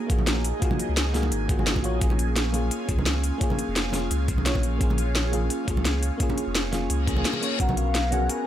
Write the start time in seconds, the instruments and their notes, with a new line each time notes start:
Already playing: fm electric piano A#3 F4 F#4 G#4 C#5, analog synth pad A#3 D#4 G#4
0.07 sub bass A#1, fm electric piano A#3 F4 F#4, kick, closed hi-hat
0.12 fm electric piano G#4
0.19 high conga
0.27 snare, closed hi-hat
0.44 closed hi-hat
0.60 fm electric piano A#3 F4 F#4, kick, closed hi-hat
0.65 fm electric piano G#4
0.71 muted conga, high conga
0.79 closed hi-hat
0.89 sub bass C#2
0.97 snare, closed hi-hat
1.13 fm electric piano A#3 F4 F#4 G#4, snare, open hi-hat, high conga
1.23 muted conga
1.32 sub bass G#1, closed hi-hat
1.48 fm electric piano A#3 F4 F#4 G#4, kick, closed hi-hat
1.57 fm electric piano A#3 F4 F#4 G#4, high conga
1.67 snare, closed hi-hat
1.76 kick, muted conga
1.83 sub bass A#1, fm electric piano A#3 F4 F#4 C#5, closed hi-hat
1.99 sub bass A#1, fm electric piano A#3 C#4 F4, analog synth pad C#4 F4, kick, closed hi-hat
2.04 fm electric piano G#4
2.10 muted conga, high conga
2.19 closed hi-hat
2.36 snare, closed hi-hat
2.52 fm electric piano A#3 C#4 F4 G#4, closed hi-hat, high conga
2.71 closed hi-hat
2.86 sub bass C#2, fm electric piano A#3 C#4 F4, kick, closed hi-hat
2.91 fm electric piano G#4
2.98 high conga
3.06 snare, closed hi-hat
3.24 closed hi-hat
3.38 fm electric piano A#3 C#4 F4, kick, closed hi-hat
3.43 fm electric piano G#4
3.50 muted conga, high conga
3.59 closed hi-hat
3.68 sub bass F1
3.76 snare, closed hi-hat
3.91 fm electric piano A#3 C#4 F4, snare, open hi-hat, high conga
3.96 fm electric piano G#4
4.11 sub bass C#2, closed hi-hat
4.28 kick, closed hi-hat
4.38 high conga
4.45 sub bass A#1, fm electric piano A#3 C#4 F4 C#5, snare, closed hi-hat
4.55 kick, muted conga
4.63 closed hi-hat
4.78 sub bass A#1, fm electric piano A#3 C#4 F4, kick, closed hi-hat
4.83 fm electric piano G#4
4.90 muted conga, high conga
4.98 closed hi-hat
5.15 snare, closed hi-hat
5.32 fm electric piano A#3 C#4 F4 G#4, closed hi-hat, high conga
5.50 closed hi-hat
5.65 sub bass C#2, fm electric piano A#3 C#4 F4, kick, closed hi-hat
5.70 fm electric piano G#4
5.77 high conga
5.85 snare, closed hi-hat
6.03 closed hi-hat
6.18 fm electric piano A#3 C#4 F4, kick, closed hi-hat
6.23 fm electric piano G#4
6.30 muted conga, high conga
6.38 closed hi-hat
6.47 sub bass F1
6.55 snare, closed hi-hat
6.72 fm electric piano A#3 C#4 F4 G#4, snare, open hi-hat, high conga
6.90 sub bass C#2, closed hi-hat, reverse cymbal
7.06 fm electric piano A#3 C#4 F4 G#4, kick, closed hi-hat
7.16 fm electric piano A#3 C#4 F4 G#4, high conga
7.25 snare, closed hi-hat
7.33 muted conga
7.41 fm electric piano A#3 C#4 F4 C#5, closed hi-hat
7.58 sub bass B1, fm electric piano B3 C#4 F#4, analog synth pad B3 F#4 A#4, soft synth lead F#5, kick, closed hi-hat
7.63 fm electric piano A#4
7.69 muted conga, high conga
7.77 soft synth lead F5, closed hi-hat
7.95 snare, closed hi-hat
8.11 fm electric piano B3 C#4 F#4 G#4, soft synth lead F#5, closed hi-hat, high conga
8.29 soft synth lead G#5, closed hi-hat